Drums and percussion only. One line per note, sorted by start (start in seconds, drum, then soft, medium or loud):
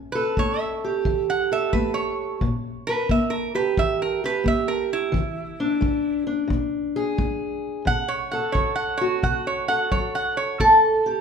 0.37 kick medium
1.05 kick medium
1.73 kick medium
2.41 kick medium
3.09 kick medium
3.77 kick medium
4.46 kick medium
5.14 kick medium
5.82 kick medium
6.50 kick medium
7.18 kick medium
7.87 kick medium
8.55 kick medium
9.23 kick medium
9.92 kick medium
10.60 kick medium